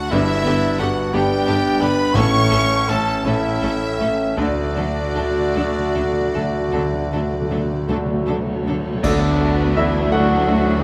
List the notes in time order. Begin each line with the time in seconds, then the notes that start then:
Already playing: D2 D3 A3 D4 F#4 F#5
0.11 G1 G2 D3 B3 D4 E4 G4 E5
0.44 G1 G2 D3 B3 D4 G4
0.78 G1 G2 D3 B3 D4 F#4 G4 F#5
1.13 G1 G2 D3 B3 D4 G4 G5
1.47 G1 G2 D3 B3 D4 G4
1.81 G1 G2 D3 B3 D4 G4 B4 B5
2.14 A1 A2 E3 A3 C#4 A4 C#5 C#6
2.51 A1 A2 E3 A3 C#4 A4
2.88 A1 A2 E3 A3 C#4 A4 A5
3.24 A1 A2 E3 A3 C#4 E4 A4 E5
3.62 A1 A2 E3 A3 C#4 A4
3.99 A1 A2 E3 A3 C#4 A4
4.37 D2 D3 F#3 A3 D4 F#4 A4 D5
4.46 D3
4.54 D3
4.63 D3
4.71 D3
4.76 D2 D3 F#3 A3 D4 A4
4.87 D3
4.95 D3
5.04 D3
5.12 D2 D3 F#3 A3 D4 A4
5.17 D3
5.31 D3
5.39 D3
5.48 D3
5.55 D2 D3 F#3 A3 D4 F#4 A4
5.63 D3
5.71 D3
5.78 D3
5.87 D3
5.94 D2 D3 F#3 A3 D4 A4
6.04 D3
6.12 D3
6.20 D3
6.28 D3
6.34 D2 D3 F#3 A3 D4 A4
6.44 D3
6.52 D3
6.59 D3
6.68 D3 D4 A4
6.73 D2 D3 F#3 A3
6.77 D3
6.85 D3
6.93 D3
7.00 D3
7.09 D2 D3 F#3 A3 D4 A4
7.17 D3
7.25 D3
7.33 D3
7.42 D3
7.50 D2 D3 F#3 A3 D4 A4
7.57 D3
7.65 D3
7.73 D3
7.82 D3
7.88 D2 D3 F#3 A3 D4 F#4 A4
7.97 D3
8.06 D3
8.14 D3
8.21 D3
8.26 D2 D3 F#3 A3 D4 A4
8.38 D3
8.47 D3
8.55 D3
8.63 D2 D3 F#3 A3
8.67 D4 A4
8.71 D3
8.79 D3
8.87 D3
8.95 D3
9.03 D2 D3 A3 B3 D4 F#4 A4 D5, concert bass drum, crash
9.40 A3 D4 F#4
9.76 E3 A3 D4 E4 F#4 E5
10.10 F#3 A3 D4 F#4 D5 F#5
10.47 A3 D4 F#4